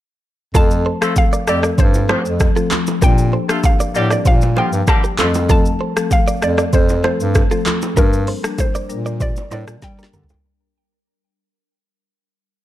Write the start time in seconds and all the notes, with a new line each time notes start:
0.54 F2 F3 A3 C4 F4 A4 A5, kick, low conga, shaker
0.71 shaker
0.86 A4 C5
1.01 F3 A3 C4 A4, cross-stick, shaker
1.16 F5, kick, high bongo, shaker
1.33 A#4 D5, shaker
1.47 F2 F3 G3 A3 C4 E4 G4 A4 D5, cross-stick, shaker
1.63 A#4 D5, cross-stick, shaker
1.78 G2 A4 C5, kick, low conga, shaker
1.94 low bongo, shaker
2.09 C3 F3 A3 C4 F4 A4 C5, cross-stick, low bongo
2.25 F2, shaker
2.40 kick, cross-stick, high bongo, shaker
2.56 F3 A3 C4 F4 A4, shaker
2.71 F4 A4, clap, high bongo, low conga, shaker
2.87 high bongo, low bongo, shaker
3.02 A#2 F3 G3 A#3 D4 G4 A#4 G5, kick, low conga, shaker
3.18 shaker
3.33 A4 C5
3.49 F3 A3 A#3 D4 F4 G4 A4, cross-stick, shaker
3.63 F5, kick, high bongo, shaker
3.80 A#4 D5, shaker
3.95 A2 D3 F3 G3 A#3 D4 G4 D5, shaker
4.10 A#4 D5, cross-stick, shaker
4.25 A#2 G4 C5 F5, kick, low conga, shaker
4.41 low bongo, shaker
4.56 D3 F3 A#3 D4 F4 G4 A4 C5 G5, low bongo
4.73 G2, shaker
4.87 D3 G3 A#3 G4 A5, kick, cross-stick, high bongo, shaker
5.04 G4 A#4, shaker
5.18 F2 F3 A3 C4 F4 A4, clap, high bongo, low conga, shaker
5.34 high bongo, low bongo, shaker
5.49 F3 A3 C4 F4 A4 A5, kick, low conga, shaker
5.65 shaker
5.81 A4 C5
5.96 F3 A3 C4 A4, cross-stick, shaker
6.11 F5, kick, high bongo, shaker
6.28 A#4 D5, shaker
6.42 F2 F3 A3 C4 A4 D5, cross-stick, shaker
6.58 A#4 D5, cross-stick, shaker
6.73 F2 A4 C5, kick, low conga, shaker
6.89 low bongo, shaker
7.04 F3 A3 C4 A4 C5, cross-stick, low bongo
7.20 G2, shaker
7.35 kick, cross-stick, high bongo, shaker
7.51 F3 A3 C4 F4 A4, shaker
7.66 F4 A4, clap, high bongo, low conga, shaker
7.82 high bongo, low bongo, shaker
7.97 G2 G3 A#3 D4 G4 A#4, kick, low conga, shaker
8.13 shaker
8.27 A4 C5, open hi-hat
8.44 G3 A#3 D4 A#4, cross-stick, shaker
8.58 C5, kick, high bongo, low bongo, shaker
8.75 A#4 D5, shaker
8.89 A#2 G3 A#3 D4 A#4, shaker
9.06 A#4 D5, shaker
9.20 G4 C5 D5, kick, low conga, shaker
9.36 low bongo, shaker
9.51 A2 G3 A#3 D4 A4 A#4 C5 D5, low bongo, shaker
9.68 A#2, cross-stick, shaker
9.82 G3 G5, kick, snare, high bongo, shaker
9.98 G3 A#3 D4 G4 A#4, shaker
10.03 snare
10.13 D3 G4 A#4, mid tom, high bongo, low conga, shaker
10.24 floor tom
10.29 high bongo, low bongo, shaker
10.34 floor tom